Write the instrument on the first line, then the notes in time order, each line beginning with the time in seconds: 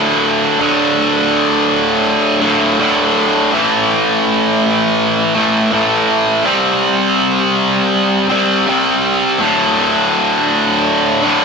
distorted electric guitar
Already playing: D2 A2 D3
0.59 D2 A2 D3
2.41 D2 A2 D3
2.79 D2 A2 D3
3.52 A2 E3 A3
5.35 A2 E3 A3
5.71 A2 E3 A3
6.44 C3 G3 C4
8.29 C3 G3 C4
8.66 C3 G3 C4
9.39 D2 A2 D3
11.22 D2 A2 D3